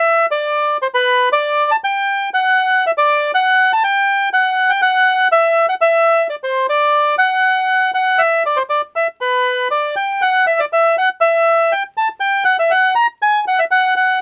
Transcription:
0.00 0.26 E5 medium
0.31 0.77 D5 medium
0.82 0.87 C5 medium
0.95 1.29 B4 medium
1.32 1.70 D5 medium
1.71 1.76 A5 medium
1.84 2.30 G5 medium
2.34 2.85 F#5 medium
2.87 2.91 E5 medium
2.98 3.31 D5 medium
3.34 3.72 F#5 medium
3.73 3.83 A5 medium
3.84 4.29 G5 medium
4.33 4.71 F#5 medium
4.70 4.81 G5 medium
4.82 5.28 F#5 medium
5.32 5.66 E5 medium
5.69 5.74 F#5 medium
5.81 6.27 E5 medium
6.30 6.36 D5 medium
6.44 6.66 C5 medium
6.69 7.15 D5 medium
7.18 7.91 F#5 medium
7.94 8.21 F#5 medium
8.18 8.43 E5 medium
8.46 8.58 D5 medium
8.56 8.63 C5 medium
8.70 8.81 D5 medium
8.96 9.07 E5 medium
9.21 9.68 B4 medium
9.71 9.95 D5 medium
9.96 10.23 G5 medium
10.22 10.45 F#5 medium
10.47 10.60 E5 medium
10.60 10.65 D5 medium
10.73 10.96 E5 medium
10.98 11.09 F#5 medium
11.21 11.73 E5 medium
11.72 11.83 G5 medium
11.97 12.08 A5 medium
12.20 12.44 G5 medium
12.44 12.57 F#5 medium
12.59 12.72 E5 medium
12.71 12.94 F#5 medium
12.95 13.07 A#5 medium
13.22 13.45 G#5 medium
13.48 13.59 F#5 medium
13.59 13.65 E5 medium
13.71 13.94 F#5 medium
13.96 14.19 F#5 medium

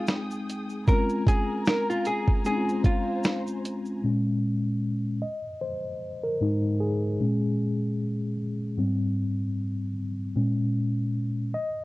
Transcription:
0.00 0.83 G#3 medium
0.00 0.84 C4 medium
0.00 0.85 D#4 medium
0.00 0.85 G#4 medium
0.00 0.85 G5 medium
0.00 0.86 G5 medium
0.00 0.85 D#6 medium
0.07 snare loud
0.07 shaker medium
0.31 shaker medium
0.49 closed hi-hat medium
0.49 shaker soft
0.69 shaker soft
0.86 2.42 G#3 medium
0.86 2.43 C4 medium
0.86 2.43 A#4 medium
0.86 1.23 A#4 loud
0.86 4.00 G#5 medium
0.86 4.00 A#5 medium
0.86 kick loud
0.86 shaker medium
0.91 2.44 C#4 medium
0.91 2.45 F4 medium
1.09 shaker soft
1.27 1.63 G#4 medium
1.27 kick loud
1.27 closed hi-hat medium
1.27 shaker soft
1.66 1.87 A#4 medium
1.66 snare loud
1.66 shaker medium
1.90 2.05 F4 medium
1.90 shaker soft
2.05 2.42 G#4 medium
2.05 closed hi-hat medium
2.05 shaker soft
2.28 kick medium
2.45 4.00 G#3 medium
2.45 4.01 C4 medium
2.45 4.02 C#4 medium
2.45 2.81 G#4 medium
2.45 4.02 C5 medium
2.45 shaker medium
2.50 2.55 D#4 medium
2.57 4.06 F4 medium
2.69 shaker soft
2.84 3.43 F4 medium
2.84 kick medium
2.84 closed hi-hat medium
2.84 shaker soft
3.23 snare loud
3.23 shaker medium
3.47 shaker soft
3.65 closed hi-hat medium
3.65 shaker medium
3.86 shaker soft
4.04 5.18 A#2 soft
4.04 5.18 G#3 soft
4.04 5.18 C#4 medium
5.22 5.62 D#5 medium
5.61 6.25 C5 medium
6.24 6.81 A#4 medium
6.41 7.15 G#2 soft
6.41 7.16 G#3 soft
6.41 7.16 D#4 medium
6.80 7.55 G#4 medium
7.20 8.34 A#2 soft
7.20 8.34 G#3 soft
7.20 8.34 C#4 soft
8.77 9.91 G#2 soft
8.77 9.92 G3 soft
8.77 9.92 C4 medium
10.36 11.50 A#2 soft
10.36 11.50 G#3 soft
10.36 11.50 C#4 medium
11.54 11.85 D#5 loud

